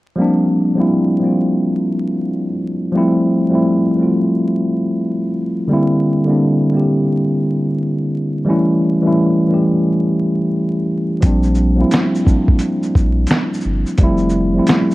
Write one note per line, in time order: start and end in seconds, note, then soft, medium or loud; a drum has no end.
0.16 0.63 F3 loud
0.16 0.64 G3 loud
0.16 0.65 A#3 loud
0.20 0.66 C4 medium
0.20 0.66 D4 loud
0.75 1.18 F3 medium
0.75 1.19 G3 medium
0.75 1.20 A#3 medium
0.75 1.20 C4 medium
0.80 1.21 E4 medium
1.20 2.48 F3 medium
1.20 2.49 G3 medium
1.20 2.50 A#3 medium
1.24 2.50 C4 medium
1.24 2.51 F4 medium
2.92 3.40 F3 loud
2.92 3.41 G3 medium
2.92 3.41 A3 loud
2.96 3.42 C4 medium
2.96 3.42 E4 loud
3.50 3.94 F3 medium
3.50 3.94 G3 medium
3.50 3.95 A3 medium
3.50 3.95 C4 medium
3.55 3.96 E4 medium
3.97 5.25 F3 medium
3.97 5.25 G3 medium
3.97 5.26 A3 medium
4.01 5.27 C4 medium
4.01 5.28 F4 medium
5.68 6.15 D3 loud
5.68 6.16 G3 loud
5.68 6.17 A#3 medium
5.72 6.18 C4 medium
5.72 6.18 E4 loud
6.25 6.69 D3 medium
6.25 6.70 G3 medium
6.25 6.71 A#3 medium
6.25 6.71 C4 medium
6.31 6.72 D4 medium
6.71 8.00 D3 medium
6.71 8.00 G3 medium
6.71 8.01 A#3 medium
6.75 8.02 C4 medium
6.75 8.02 G4 medium
8.45 8.92 E3 loud
8.45 8.93 G3 loud
8.45 8.93 A3 medium
8.49 8.94 C#4 loud
8.49 8.95 E4 loud
9.02 9.46 E3 medium
9.02 9.46 G3 medium
9.02 9.47 A3 medium
9.06 9.48 C#4 medium
9.06 9.48 E4 loud
9.48 10.76 E3 medium
9.48 10.77 G3 medium
9.48 10.78 A3 medium
9.52 10.78 C#4 medium
9.52 10.79 G4 medium
11.21 11.84 A#1 loud
11.21 11.68 F3 medium
11.21 11.68 G3 medium
11.21 11.69 A#3 medium
11.21 kick loud
11.21 closed hi-hat medium
11.21 shaker medium
11.25 11.70 C4 loud
11.25 11.71 D4 loud
11.43 shaker soft
11.55 shaker medium
11.76 12.20 F3 medium
11.76 12.21 G3 medium
11.76 12.22 A#3 medium
11.80 12.22 C4 medium
11.80 12.23 E4 loud
11.91 snare loud
11.91 closed hi-hat medium
11.91 shaker medium
12.15 shaker soft
12.23 13.51 F3 medium
12.23 13.52 G3 medium
12.23 13.52 A#3 medium
12.27 13.53 C4 medium
12.27 13.54 D4 medium
12.27 kick medium
12.27 shaker soft
12.48 12.60 A1 medium
12.48 kick medium
12.59 closed hi-hat medium
12.59 shaker medium
12.83 shaker soft
12.95 13.26 A#1 medium
12.95 kick medium
12.95 shaker soft
13.27 snare loud
13.27 closed hi-hat medium
13.27 shaker medium
13.54 shaker soft
13.61 shaker soft
13.65 13.84 G1 medium
13.86 shaker soft
13.98 14.60 F1 loud
13.98 14.44 F3 loud
13.98 14.45 G3 loud
13.98 14.46 A3 loud
13.98 kick loud
13.98 closed hi-hat medium
13.98 shaker medium
14.02 14.47 C4 medium
14.02 14.47 E4 loud
14.17 shaker soft
14.29 shaker medium
14.54 14.95 F3 medium
14.54 14.95 G3 medium
14.54 14.95 A3 medium
14.58 14.95 C4 medium
14.58 14.95 E4 loud
14.67 snare loud
14.67 closed hi-hat medium
14.67 shaker medium
14.91 shaker soft